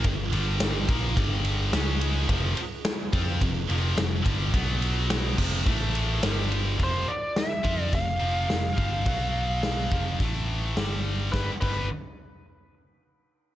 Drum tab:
CC |--------|--------|---x----|--------|
RD |xxxxxxxx|xxxxxxxx|xxx--xxx|--------|
HH |--------|--------|--------|o-o-o-o-|
SD |--o---o-|--o---o-|--o---o-|--o---o-|
BD |o--oo---|o--oo--o|o--oo---|o--oo--o|

CC |--------|-x------|
RD |--------|--------|
HH |o-o-o-o-|--------|
SD |--o---o-|o-------|
BD |o--oo---|oo------|